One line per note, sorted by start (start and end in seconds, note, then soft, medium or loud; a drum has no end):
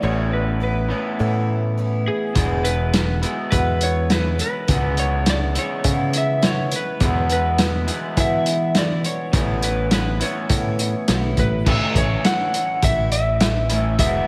0.02 0.91 A1 medium
0.02 0.61 A2 medium
0.02 0.60 E3 medium
0.02 0.61 B3 medium
0.02 0.60 C#4 medium
0.02 0.62 E4 medium
0.02 0.33 C#5 medium
0.33 0.62 B4 medium
0.60 0.90 E3 medium
0.60 0.90 B3 medium
0.60 0.90 C#4 medium
0.60 0.89 E4 medium
0.60 1.17 B4 medium
0.90 2.34 A2 medium
0.90 2.35 E3 medium
0.90 1.19 B3 soft
0.90 1.19 C#4 soft
0.90 1.19 E4 soft
1.19 1.78 A2 medium
1.19 2.08 A2 medium
1.19 1.77 E3 medium
1.19 1.78 B3 medium
1.19 1.78 C#4 medium
1.19 1.79 E4 medium
1.77 2.35 E3 medium
1.77 2.36 B3 medium
1.77 2.36 C#4 medium
1.77 2.36 E4 medium
2.08 2.67 G#4 medium
2.35 3.24 E1 medium
2.35 2.94 E2 medium
2.35 2.94 B2 medium
2.35 2.93 E3 medium
2.35 2.93 G#3 medium
2.35 2.94 B3 medium
2.35 2.94 E4 medium
2.35 kick medium
2.35 closed hi-hat medium
2.64 3.19 B4 medium
2.64 closed hi-hat medium
2.93 3.23 E3 medium
2.93 3.22 G#3 medium
2.93 3.22 B3 medium
2.93 3.21 E4 medium
2.93 snare loud
2.93 closed hi-hat medium
3.22 4.68 E2 medium
3.22 4.67 B2 medium
3.22 3.50 E3 soft
3.22 3.51 G#3 soft
3.22 3.51 B3 soft
3.22 3.52 E4 soft
3.22 closed hi-hat medium
3.51 4.10 E2 medium
3.51 4.40 E2 medium
3.51 4.10 B2 medium
3.51 4.09 E3 medium
3.51 4.10 G#3 medium
3.51 4.10 B3 medium
3.51 4.11 E4 medium
3.51 3.82 B4 medium
3.51 kick medium
3.51 closed hi-hat medium
3.81 4.09 C#5 medium
3.81 closed hi-hat medium
4.09 4.39 E3 medium
4.09 4.38 G#3 medium
4.09 4.37 B3 medium
4.09 4.37 E4 medium
4.09 4.40 B4 medium
4.09 snare loud
4.09 closed hi-hat medium
4.38 4.67 E3 soft
4.38 4.67 G#3 soft
4.38 4.67 B3 soft
4.38 4.68 E4 soft
4.38 4.95 B4 medium
4.38 closed hi-hat medium
4.67 5.57 C#2 medium
4.67 5.26 C#3 medium
4.67 5.25 E3 medium
4.67 5.26 G#3 medium
4.67 5.27 B3 medium
4.67 5.27 E4 medium
4.67 kick medium
4.67 closed hi-hat medium
4.97 5.29 C#5 medium
4.97 closed hi-hat medium
5.25 5.55 E3 medium
5.25 5.56 G#3 medium
5.25 5.55 B3 medium
5.25 5.54 E4 medium
5.25 snare loud
5.25 closed hi-hat medium
5.30 5.37 D5 loud
5.55 7.00 C#3 medium
5.55 7.01 E3 medium
5.55 5.84 G#3 soft
5.55 5.84 B3 soft
5.55 5.84 E4 soft
5.55 closed hi-hat medium
5.59 6.17 C#5 medium
5.84 6.43 C#3 medium
5.84 6.72 C#3 medium
5.84 6.41 E3 medium
5.84 6.41 G#3 medium
5.84 6.43 B3 medium
5.84 6.43 E4 medium
5.84 kick medium
5.84 closed hi-hat medium
6.13 closed hi-hat medium
6.18 6.46 E5 medium
6.42 6.71 E3 medium
6.42 6.71 G#3 medium
6.42 6.71 B3 medium
6.42 6.70 E4 medium
6.42 6.74 C#5 medium
6.42 snare loud
6.42 closed hi-hat medium
6.71 7.00 G#3 soft
6.71 7.00 B3 soft
6.71 7.00 E4 soft
6.71 closed hi-hat medium
6.76 7.28 B4 medium
7.00 7.59 E2 medium
7.00 7.89 E2 medium
7.00 7.59 B2 medium
7.00 7.58 E3 medium
7.00 7.58 G#3 medium
7.00 7.60 B3 medium
7.00 7.61 E4 medium
7.00 kick loud
7.00 closed hi-hat medium
7.30 8.21 B4 medium
7.30 closed hi-hat medium
7.58 7.88 E3 medium
7.58 7.88 G#3 medium
7.58 7.87 B3 medium
7.58 7.86 E4 medium
7.58 snare loud
7.58 closed hi-hat medium
7.87 9.32 E2 medium
7.87 9.31 B2 medium
7.87 8.16 E3 soft
7.87 8.16 G#3 soft
7.87 8.17 B3 soft
7.87 8.17 E4 soft
7.87 closed hi-hat medium
8.16 8.75 E2 medium
8.16 8.75 B2 medium
8.16 8.75 E3 medium
8.16 9.05 E3 medium
8.16 8.75 G#3 medium
8.16 8.76 B3 medium
8.16 8.77 E4 medium
8.16 8.79 E5 medium
8.16 kick medium
8.16 closed hi-hat medium
8.46 closed hi-hat medium
8.75 9.34 E3 medium
8.75 9.34 G#3 medium
8.75 9.34 B3 medium
8.75 9.35 E4 medium
8.75 9.05 D5 medium
8.75 snare loud
8.75 closed hi-hat medium
9.04 9.64 C#5 medium
9.04 closed hi-hat medium
9.33 10.21 A1 medium
9.33 9.92 A2 medium
9.33 9.90 E3 medium
9.33 9.91 B3 medium
9.33 9.92 C#4 medium
9.33 9.92 E4 medium
9.33 kick medium
9.33 closed hi-hat medium
9.62 9.91 B4 medium
9.62 closed hi-hat medium
9.91 10.20 E3 medium
9.91 10.21 B3 medium
9.91 10.21 C#4 medium
9.91 10.20 E4 medium
9.91 10.19 B4 medium
9.91 snare loud
9.91 closed hi-hat medium
10.21 11.64 A2 medium
10.21 11.65 E3 medium
10.21 10.50 B3 soft
10.21 10.50 C#4 soft
10.21 10.50 E4 soft
10.21 11.34 C#5 medium
10.21 closed hi-hat medium
10.50 10.94 A2 medium
10.50 11.08 A2 medium
10.50 11.07 E3 medium
10.50 11.07 B3 medium
10.50 11.08 C#4 medium
10.50 11.09 E4 medium
10.50 kick medium
10.50 closed hi-hat medium
10.79 closed hi-hat medium
11.08 11.35 B1 medium
11.08 11.65 E3 medium
11.08 11.66 B3 medium
11.08 11.66 C#4 medium
11.08 11.66 E4 medium
11.08 snare medium
11.08 closed hi-hat medium
11.37 11.63 A1 medium
11.37 11.68 B4 medium
11.37 kick medium
11.37 closed hi-hat medium
11.66 11.77 A1 medium
11.66 11.95 A2 medium
11.66 11.95 E3 medium
11.66 11.95 A3 medium
11.66 11.95 C#4 medium
11.66 11.94 E4 medium
11.66 11.94 A4 medium
11.66 kick loud
11.66 crash loud
11.95 12.17 A1 medium
11.95 12.24 A3 soft
11.95 12.25 C#4 medium
11.95 12.24 E4 medium
11.95 12.26 C#5 medium
11.95 kick medium
11.95 closed hi-hat medium
12.25 12.53 E3 medium
12.25 12.54 A3 medium
12.25 12.53 C#4 medium
12.25 12.52 E4 medium
12.25 12.85 F#5 medium
12.25 snare loud
12.25 closed hi-hat medium
12.53 12.82 A3 soft
12.53 12.82 C#4 soft
12.53 12.82 E4 soft
12.53 closed hi-hat medium
12.82 13.99 A1 medium
12.82 13.41 A2 medium
12.82 13.39 E3 medium
12.82 13.40 A3 medium
12.82 13.40 C#4 medium
12.82 13.41 E4 medium
12.82 13.11 E5 medium
12.82 kick medium
12.82 closed hi-hat medium
13.12 13.99 E5 loud
13.12 closed hi-hat medium
13.40 13.98 E3 medium
13.40 13.99 A3 medium
13.40 13.99 C#4 medium
13.40 13.99 E4 medium
13.40 snare loud
13.40 closed hi-hat medium
13.70 13.98 A2 medium
13.70 13.98 E3 medium
13.70 13.98 A3 medium
13.70 13.97 C#4 medium
13.70 13.97 E4 medium
13.70 closed hi-hat medium
13.98 14.21 E1 medium
13.98 14.27 E2 medium
13.98 14.27 B2 medium
13.98 14.27 E3 medium
13.98 14.27 G#3 medium
13.98 14.27 B3 medium
13.98 14.26 E4 medium
13.98 14.27 E5 loud
13.98 kick loud
13.98 closed hi-hat medium